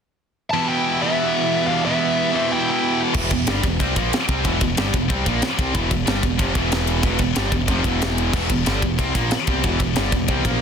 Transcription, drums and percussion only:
3.14 kick loud
3.14 crash loud
3.31 kick medium
3.31 ride medium
3.47 snare loud
3.47 ride loud
3.64 kick medium
3.64 ride medium
3.80 kick loud
3.80 ride loud
3.96 kick loud
3.96 ride medium
4.13 snare loud
4.13 ride loud
4.29 kick loud
4.29 ride medium
4.45 kick loud
4.45 ride loud
4.61 kick medium
4.61 ride medium
4.77 snare loud
4.77 ride loud
4.94 kick medium
4.94 ride medium
5.10 kick loud
5.10 ride loud
5.26 kick loud
5.26 ride medium
5.42 snare loud
5.42 ride medium
5.59 kick loud
5.59 ride medium
5.75 kick loud
5.75 ride loud
5.91 kick medium
5.91 ride medium
6.07 snare loud
6.07 ride loud
6.23 kick medium
6.23 ride medium
6.39 kick loud
6.39 ride loud
6.55 kick loud
6.55 ride medium
6.72 snare loud
6.72 ride loud
6.87 ride medium
7.03 kick loud
7.03 ride loud
7.19 kick medium
7.19 ride medium
7.36 snare loud
7.36 ride loud
7.52 kick medium
7.52 ride medium
7.68 kick loud
7.68 ride loud
7.84 kick loud
7.84 ride medium
8.02 snare loud
8.02 ride medium
8.18 ride medium
8.33 kick loud
8.33 crash loud
8.50 kick loud
8.50 ride medium
8.66 snare loud
8.66 ride loud
8.82 kick medium
8.82 ride medium
8.99 kick loud
8.99 ride loud
9.15 kick loud
9.15 ride medium
9.31 snare loud
9.31 ride loud
9.47 kick loud
9.47 ride medium
9.64 kick loud
9.64 ride loud
9.80 kick loud
9.80 ride medium
9.96 snare loud
9.96 ride loud
10.12 kick medium
10.12 ride medium
10.28 kick loud
10.28 ride loud
10.45 kick loud
10.45 ride medium

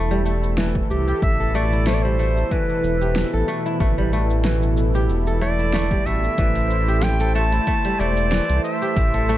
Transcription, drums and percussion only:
0.11 shaker soft
0.26 shaker medium
0.44 shaker soft
0.58 snare loud
0.58 shaker soft
0.75 kick medium
0.91 shaker medium
1.08 shaker soft
1.22 kick loud
1.22 shaker soft
1.55 shaker medium
1.72 shaker soft
1.87 snare medium
1.87 shaker soft
2.20 shaker medium
2.37 shaker soft
2.51 kick loud
2.51 shaker soft
2.69 shaker soft
2.84 shaker medium
3.02 shaker soft
3.16 snare loud
3.16 shaker soft
3.49 shaker medium
3.66 shaker soft
3.80 kick loud
3.80 shaker soft
4.13 shaker medium
4.30 shaker soft
4.45 snare medium
4.45 shaker soft
4.63 shaker soft
4.77 shaker medium
4.95 shaker soft
5.09 shaker soft
5.27 shaker soft
5.42 shaker medium
5.59 shaker soft
5.73 snare medium
5.73 shaker soft
5.91 kick medium
6.06 shaker medium
6.24 shaker soft
6.38 kick loud
6.38 open hi-hat medium
6.38 shaker soft
6.55 open hi-hat soft
6.71 shaker medium
6.88 shaker soft
7.02 snare medium
7.02 open hi-hat medium
7.02 shaker soft
7.20 open hi-hat soft
7.35 shaker medium
7.52 open hi-hat soft
7.52 shaker soft
7.67 kick medium
7.67 open hi-hat medium
7.67 shaker soft
7.85 open hi-hat soft
7.85 shaker soft
8.00 shaker medium
8.17 open hi-hat soft
8.17 shaker soft
8.32 snare medium
8.32 open hi-hat medium
8.32 shaker soft
8.49 open hi-hat soft
8.65 shaker medium
8.82 shaker soft
8.96 kick loud
8.96 open hi-hat medium
8.96 shaker soft
9.14 open hi-hat soft
9.29 shaker medium

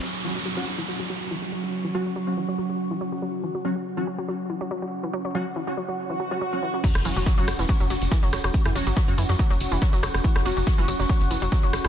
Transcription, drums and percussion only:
6.84 kick loud
6.84 closed hi-hat loud
6.84 crash loud
6.84 tambourine medium
6.84 tambourine soft
6.95 cross-stick medium
6.95 snare soft
6.95 closed hi-hat medium
6.95 tambourine soft
7.05 open hi-hat loud
7.05 ride medium
7.05 tambourine medium
7.17 closed hi-hat medium
7.17 tambourine soft
7.26 kick loud
7.26 snare loud
7.26 closed hi-hat loud
7.26 tambourine soft
7.26 tambourine medium
7.38 closed hi-hat medium
7.38 tambourine soft
7.48 cross-stick medium
7.48 open hi-hat loud
7.48 ride medium
7.48 tambourine medium
7.59 snare soft
7.59 closed hi-hat medium
7.59 tambourine soft
7.69 kick loud
7.69 closed hi-hat loud
7.69 open hi-hat medium
7.69 tambourine soft
7.80 closed hi-hat medium
7.80 closed hi-hat soft
7.80 tambourine soft
7.90 snare soft
7.90 open hi-hat loud
7.90 ride medium
7.90 tambourine medium
8.02 closed hi-hat medium
8.02 tambourine soft
8.12 kick loud
8.12 snare loud
8.12 closed hi-hat loud
8.12 tambourine soft
8.12 tambourine medium
8.22 snare soft
8.22 closed hi-hat medium
8.22 tambourine soft
8.32 cross-stick medium
8.32 snare medium
8.32 open hi-hat loud
8.32 ride medium
8.32 tambourine medium
8.44 cross-stick medium
8.44 closed hi-hat medium
8.44 tambourine soft
8.53 kick loud
8.53 closed hi-hat loud
8.53 tambourine medium
8.53 tambourine soft
8.65 cross-stick medium
8.65 snare soft
8.65 closed hi-hat medium
8.65 tambourine soft
8.75 open hi-hat loud
8.75 ride medium
8.75 tambourine medium
8.87 closed hi-hat medium
8.87 tambourine soft
8.96 kick loud
8.96 snare loud
8.96 closed hi-hat loud
8.96 tambourine medium
8.96 tambourine soft
9.08 closed hi-hat medium
9.08 tambourine soft
9.18 open hi-hat loud
9.18 ride medium
9.18 tambourine medium
9.29 snare soft
9.29 closed hi-hat medium
9.29 tambourine soft
9.39 kick loud
9.39 closed hi-hat loud
9.39 tambourine soft
9.39 tambourine medium
9.51 closed hi-hat medium
9.51 tambourine soft
9.60 open hi-hat loud
9.60 ride medium
9.60 tambourine medium
9.72 closed hi-hat medium
9.72 tambourine soft
9.82 kick loud
9.82 snare loud
9.82 closed hi-hat loud
9.82 tambourine medium
9.82 tambourine soft
9.93 snare soft
9.93 closed hi-hat medium
9.93 tambourine soft
10.03 cross-stick medium
10.03 open hi-hat loud
10.03 ride medium
10.03 tambourine medium
10.14 cross-stick medium
10.14 closed hi-hat medium
10.14 tambourine soft
10.24 kick loud
10.24 closed hi-hat loud
10.24 tambourine medium
10.24 tambourine soft
10.35 cross-stick medium
10.35 snare soft
10.35 closed hi-hat medium
10.35 tambourine soft
10.46 open hi-hat loud
10.46 ride medium
10.46 tambourine medium
10.57 closed hi-hat medium
10.57 tambourine soft
10.67 kick loud
10.67 snare loud
10.67 closed hi-hat medium
10.67 tambourine soft
10.67 tambourine medium
10.78 closed hi-hat medium
10.78 tambourine soft
10.88 open hi-hat loud
10.88 ride medium
10.88 tambourine medium
10.99 snare soft
10.99 closed hi-hat medium
10.99 tambourine soft
11.09 kick loud
11.09 closed hi-hat medium
11.09 open hi-hat medium
11.09 tambourine soft
11.21 closed hi-hat soft
11.21 closed hi-hat medium
11.21 tambourine soft
11.31 snare soft
11.31 open hi-hat loud
11.31 ride medium
11.31 tambourine medium
11.42 closed hi-hat medium
11.42 tambourine soft
11.52 kick loud
11.52 snare loud
11.52 closed hi-hat loud
11.52 tambourine medium
11.52 tambourine soft
11.63 snare soft
11.63 closed hi-hat medium
11.63 tambourine soft
11.73 cross-stick loud
11.73 snare medium
11.73 open hi-hat loud
11.73 ride medium
11.73 tambourine medium
11.85 cross-stick medium
11.85 closed hi-hat medium
11.85 tambourine soft

